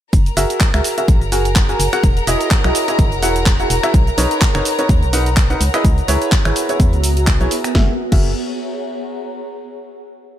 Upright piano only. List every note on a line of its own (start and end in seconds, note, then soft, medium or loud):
0.37 0.59 F#4 loud
0.37 0.59 G#4 loud
0.37 0.59 A#4 loud
0.37 0.59 E5 loud
0.74 0.95 F#4 medium
0.74 0.95 G#4 medium
0.74 0.95 A#4 medium
0.74 0.95 E5 loud
0.98 1.19 F#4 medium
0.98 1.19 G#4 medium
0.98 1.19 A#4 medium
0.98 1.19 E5 medium
1.32 1.47 F#4 medium
1.32 1.47 G#4 medium
1.32 1.47 A#4 medium
1.32 1.47 G#5 loud
1.69 1.82 F#4 medium
1.69 1.82 G#4 medium
1.69 1.82 A#4 medium
1.69 1.82 G#5 loud
1.93 2.02 F#4 loud
1.93 2.02 G#4 loud
1.93 2.02 A#4 medium
1.93 2.02 F#5 loud
2.27 2.49 E4 loud
2.27 2.49 F#4 loud
2.27 2.49 G#4 loud
2.27 2.49 D#5 loud
2.64 2.85 E4 medium
2.64 2.85 F#4 medium
2.64 2.85 G#4 medium
2.64 2.85 D#5 medium
2.88 3.10 E4 medium
2.88 3.10 F#4 medium
2.88 3.10 G#4 medium
2.88 3.10 D#5 medium
3.23 3.37 E4 medium
3.23 3.37 F#4 medium
3.23 3.37 G#4 medium
3.23 3.37 F#5 loud
3.60 3.72 E4 medium
3.60 3.72 F#4 medium
3.60 3.72 G#4 medium
3.60 3.72 F#5 medium
3.83 3.93 E4 loud
3.83 3.93 F#4 loud
3.83 3.93 G#4 loud
3.83 3.93 E5 loud
4.18 4.40 D#4 loud
4.18 4.40 A#4 loud
4.18 4.40 B4 loud
4.18 4.40 C#5 loud
4.55 4.76 D#4 medium
4.55 4.76 A#4 medium
4.55 4.76 B4 medium
4.55 4.76 C#5 loud
4.79 5.00 D#4 medium
4.79 5.00 A#4 medium
4.79 5.00 B4 medium
4.79 5.00 C#5 medium
5.13 5.28 D#4 medium
5.13 5.28 A#4 medium
5.13 5.28 B4 medium
5.13 5.28 F#5 loud
5.50 5.59 D#4 medium
5.50 5.59 A#4 medium
5.50 5.59 B4 medium
5.50 5.59 F#5 loud
5.74 5.86 E4 loud
5.74 5.86 G#4 loud
5.74 5.86 B4 loud
5.74 5.86 D#5 loud
6.08 6.30 E4 loud
6.08 6.30 G#4 loud
6.08 6.30 B4 loud
6.08 6.30 C#5 loud
6.45 6.66 E4 medium
6.45 6.66 G#4 medium
6.45 6.66 B4 medium
6.45 6.66 C#5 medium
6.69 6.91 E4 medium
6.69 6.91 G#4 medium
6.69 6.91 B4 medium
6.69 6.91 C#5 medium
7.41 7.53 E4 medium
7.41 7.53 G#4 medium
7.41 7.53 B4 medium
7.41 7.53 C#5 medium
7.75 7.89 F#4 medium
7.75 7.89 G#4 medium
7.75 7.89 A#4 medium
7.75 7.89 E5 loud
8.12 8.29 F#4 medium
8.12 8.29 G#4 medium
8.12 8.29 A#4 medium
8.12 8.29 E5 loud